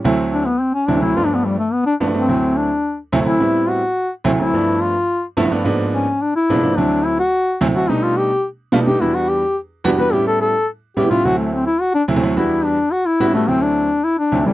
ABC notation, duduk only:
X:1
M:4/4
L:1/8
Q:1/4=214
K:Dmix
V:1 name="Duduk"
z2 D B, C ^C D E | (3=F D B, G, A, B, D z C- | C2 D3 z2 E- | E2 F3 z2 E- |
E2 =F3 z3 | z2 ^C2 D E3 | D2 E F3 z F | ^D =F G2 z3 G |
E F G2 z3 B | G A A2 z2 G =F | F A, C E F D z2 | E2 D2 F E2 A, |
C D3 E D2 G, |]